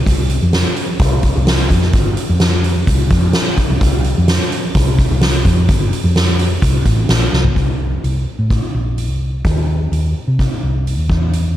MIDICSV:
0, 0, Header, 1, 3, 480
1, 0, Start_track
1, 0, Tempo, 469484
1, 64, Time_signature, 4, 2, 24, 8
1, 11828, End_track
2, 0, Start_track
2, 0, Title_t, "Fingered electric bass"
2, 0, Program_c, 0, 33
2, 63, Note_on_c, 0, 36, 84
2, 386, Note_off_c, 0, 36, 0
2, 431, Note_on_c, 0, 41, 71
2, 643, Note_off_c, 0, 41, 0
2, 1022, Note_on_c, 0, 36, 82
2, 1346, Note_off_c, 0, 36, 0
2, 1392, Note_on_c, 0, 36, 84
2, 1711, Note_off_c, 0, 36, 0
2, 1737, Note_on_c, 0, 41, 79
2, 1955, Note_off_c, 0, 41, 0
2, 1980, Note_on_c, 0, 31, 87
2, 2197, Note_off_c, 0, 31, 0
2, 2346, Note_on_c, 0, 41, 80
2, 2881, Note_off_c, 0, 41, 0
2, 2938, Note_on_c, 0, 36, 92
2, 3155, Note_off_c, 0, 36, 0
2, 3177, Note_on_c, 0, 41, 88
2, 3394, Note_off_c, 0, 41, 0
2, 3781, Note_on_c, 0, 36, 85
2, 3886, Note_off_c, 0, 36, 0
2, 3892, Note_on_c, 0, 36, 89
2, 4218, Note_off_c, 0, 36, 0
2, 4272, Note_on_c, 0, 41, 78
2, 4481, Note_off_c, 0, 41, 0
2, 4856, Note_on_c, 0, 36, 87
2, 5178, Note_off_c, 0, 36, 0
2, 5222, Note_on_c, 0, 36, 86
2, 5542, Note_off_c, 0, 36, 0
2, 5577, Note_on_c, 0, 41, 83
2, 5791, Note_off_c, 0, 41, 0
2, 5813, Note_on_c, 0, 31, 97
2, 6029, Note_off_c, 0, 31, 0
2, 6174, Note_on_c, 0, 41, 80
2, 6711, Note_off_c, 0, 41, 0
2, 6771, Note_on_c, 0, 36, 88
2, 6987, Note_off_c, 0, 36, 0
2, 7011, Note_on_c, 0, 33, 88
2, 7229, Note_off_c, 0, 33, 0
2, 7251, Note_on_c, 0, 34, 89
2, 7469, Note_off_c, 0, 34, 0
2, 7490, Note_on_c, 0, 36, 75
2, 7709, Note_off_c, 0, 36, 0
2, 7735, Note_on_c, 0, 36, 68
2, 8165, Note_off_c, 0, 36, 0
2, 8215, Note_on_c, 0, 36, 66
2, 8431, Note_off_c, 0, 36, 0
2, 8575, Note_on_c, 0, 45, 60
2, 8791, Note_off_c, 0, 45, 0
2, 8940, Note_on_c, 0, 34, 70
2, 9290, Note_off_c, 0, 34, 0
2, 9290, Note_on_c, 0, 36, 69
2, 9617, Note_off_c, 0, 36, 0
2, 9663, Note_on_c, 0, 39, 69
2, 10093, Note_off_c, 0, 39, 0
2, 10139, Note_on_c, 0, 39, 69
2, 10356, Note_off_c, 0, 39, 0
2, 10505, Note_on_c, 0, 48, 61
2, 10720, Note_off_c, 0, 48, 0
2, 10868, Note_on_c, 0, 36, 67
2, 11230, Note_off_c, 0, 36, 0
2, 11230, Note_on_c, 0, 39, 74
2, 11337, Note_off_c, 0, 39, 0
2, 11344, Note_on_c, 0, 40, 76
2, 11828, Note_off_c, 0, 40, 0
2, 11828, End_track
3, 0, Start_track
3, 0, Title_t, "Drums"
3, 66, Note_on_c, 9, 36, 105
3, 70, Note_on_c, 9, 46, 69
3, 168, Note_off_c, 9, 36, 0
3, 172, Note_off_c, 9, 46, 0
3, 302, Note_on_c, 9, 46, 52
3, 404, Note_off_c, 9, 46, 0
3, 541, Note_on_c, 9, 46, 70
3, 542, Note_on_c, 9, 38, 99
3, 644, Note_off_c, 9, 46, 0
3, 645, Note_off_c, 9, 38, 0
3, 780, Note_on_c, 9, 46, 51
3, 882, Note_off_c, 9, 46, 0
3, 1017, Note_on_c, 9, 46, 74
3, 1020, Note_on_c, 9, 36, 111
3, 1120, Note_off_c, 9, 46, 0
3, 1122, Note_off_c, 9, 36, 0
3, 1255, Note_on_c, 9, 46, 54
3, 1261, Note_on_c, 9, 36, 78
3, 1357, Note_off_c, 9, 46, 0
3, 1363, Note_off_c, 9, 36, 0
3, 1501, Note_on_c, 9, 46, 80
3, 1502, Note_on_c, 9, 38, 105
3, 1603, Note_off_c, 9, 46, 0
3, 1604, Note_off_c, 9, 38, 0
3, 1740, Note_on_c, 9, 36, 77
3, 1742, Note_on_c, 9, 46, 57
3, 1842, Note_off_c, 9, 36, 0
3, 1844, Note_off_c, 9, 46, 0
3, 1856, Note_on_c, 9, 38, 30
3, 1958, Note_off_c, 9, 38, 0
3, 1974, Note_on_c, 9, 46, 71
3, 1979, Note_on_c, 9, 36, 106
3, 2077, Note_off_c, 9, 46, 0
3, 2081, Note_off_c, 9, 36, 0
3, 2217, Note_on_c, 9, 46, 51
3, 2319, Note_off_c, 9, 46, 0
3, 2452, Note_on_c, 9, 46, 68
3, 2453, Note_on_c, 9, 38, 99
3, 2554, Note_off_c, 9, 46, 0
3, 2555, Note_off_c, 9, 38, 0
3, 2699, Note_on_c, 9, 46, 49
3, 2801, Note_off_c, 9, 46, 0
3, 2936, Note_on_c, 9, 46, 67
3, 2937, Note_on_c, 9, 36, 97
3, 3038, Note_off_c, 9, 46, 0
3, 3039, Note_off_c, 9, 36, 0
3, 3171, Note_on_c, 9, 46, 49
3, 3176, Note_on_c, 9, 36, 84
3, 3274, Note_off_c, 9, 46, 0
3, 3278, Note_off_c, 9, 36, 0
3, 3406, Note_on_c, 9, 46, 67
3, 3407, Note_on_c, 9, 38, 110
3, 3508, Note_off_c, 9, 46, 0
3, 3509, Note_off_c, 9, 38, 0
3, 3655, Note_on_c, 9, 46, 50
3, 3656, Note_on_c, 9, 36, 83
3, 3757, Note_off_c, 9, 46, 0
3, 3759, Note_off_c, 9, 36, 0
3, 3896, Note_on_c, 9, 36, 112
3, 3897, Note_on_c, 9, 46, 72
3, 3999, Note_off_c, 9, 36, 0
3, 3999, Note_off_c, 9, 46, 0
3, 4133, Note_on_c, 9, 46, 49
3, 4235, Note_off_c, 9, 46, 0
3, 4375, Note_on_c, 9, 46, 68
3, 4376, Note_on_c, 9, 38, 105
3, 4477, Note_off_c, 9, 46, 0
3, 4478, Note_off_c, 9, 38, 0
3, 4620, Note_on_c, 9, 46, 52
3, 4723, Note_off_c, 9, 46, 0
3, 4854, Note_on_c, 9, 46, 76
3, 4857, Note_on_c, 9, 36, 104
3, 4956, Note_off_c, 9, 46, 0
3, 4959, Note_off_c, 9, 36, 0
3, 5097, Note_on_c, 9, 36, 82
3, 5102, Note_on_c, 9, 46, 54
3, 5200, Note_off_c, 9, 36, 0
3, 5204, Note_off_c, 9, 46, 0
3, 5330, Note_on_c, 9, 46, 76
3, 5331, Note_on_c, 9, 38, 105
3, 5432, Note_off_c, 9, 46, 0
3, 5433, Note_off_c, 9, 38, 0
3, 5574, Note_on_c, 9, 36, 86
3, 5575, Note_on_c, 9, 46, 61
3, 5676, Note_off_c, 9, 36, 0
3, 5677, Note_off_c, 9, 46, 0
3, 5814, Note_on_c, 9, 46, 80
3, 5816, Note_on_c, 9, 36, 107
3, 5916, Note_off_c, 9, 46, 0
3, 5918, Note_off_c, 9, 36, 0
3, 6060, Note_on_c, 9, 46, 51
3, 6162, Note_off_c, 9, 46, 0
3, 6295, Note_on_c, 9, 46, 71
3, 6296, Note_on_c, 9, 38, 97
3, 6398, Note_off_c, 9, 46, 0
3, 6399, Note_off_c, 9, 38, 0
3, 6534, Note_on_c, 9, 46, 54
3, 6637, Note_off_c, 9, 46, 0
3, 6772, Note_on_c, 9, 36, 103
3, 6772, Note_on_c, 9, 46, 76
3, 6874, Note_off_c, 9, 36, 0
3, 6874, Note_off_c, 9, 46, 0
3, 7008, Note_on_c, 9, 46, 55
3, 7009, Note_on_c, 9, 36, 79
3, 7110, Note_off_c, 9, 46, 0
3, 7112, Note_off_c, 9, 36, 0
3, 7248, Note_on_c, 9, 46, 73
3, 7249, Note_on_c, 9, 38, 104
3, 7350, Note_off_c, 9, 46, 0
3, 7351, Note_off_c, 9, 38, 0
3, 7494, Note_on_c, 9, 38, 62
3, 7596, Note_off_c, 9, 38, 0
3, 7612, Note_on_c, 9, 43, 87
3, 7714, Note_off_c, 9, 43, 0
3, 7731, Note_on_c, 9, 36, 87
3, 7733, Note_on_c, 9, 46, 38
3, 7834, Note_off_c, 9, 36, 0
3, 7835, Note_off_c, 9, 46, 0
3, 8221, Note_on_c, 9, 46, 37
3, 8323, Note_off_c, 9, 46, 0
3, 8695, Note_on_c, 9, 36, 88
3, 8698, Note_on_c, 9, 46, 41
3, 8797, Note_off_c, 9, 36, 0
3, 8800, Note_off_c, 9, 46, 0
3, 9179, Note_on_c, 9, 46, 41
3, 9281, Note_off_c, 9, 46, 0
3, 9657, Note_on_c, 9, 46, 42
3, 9659, Note_on_c, 9, 36, 87
3, 9759, Note_off_c, 9, 46, 0
3, 9761, Note_off_c, 9, 36, 0
3, 10149, Note_on_c, 9, 46, 38
3, 10251, Note_off_c, 9, 46, 0
3, 10625, Note_on_c, 9, 36, 81
3, 10631, Note_on_c, 9, 46, 39
3, 10728, Note_off_c, 9, 36, 0
3, 10733, Note_off_c, 9, 46, 0
3, 11113, Note_on_c, 9, 46, 40
3, 11216, Note_off_c, 9, 46, 0
3, 11344, Note_on_c, 9, 36, 79
3, 11446, Note_off_c, 9, 36, 0
3, 11586, Note_on_c, 9, 46, 41
3, 11689, Note_off_c, 9, 46, 0
3, 11828, End_track
0, 0, End_of_file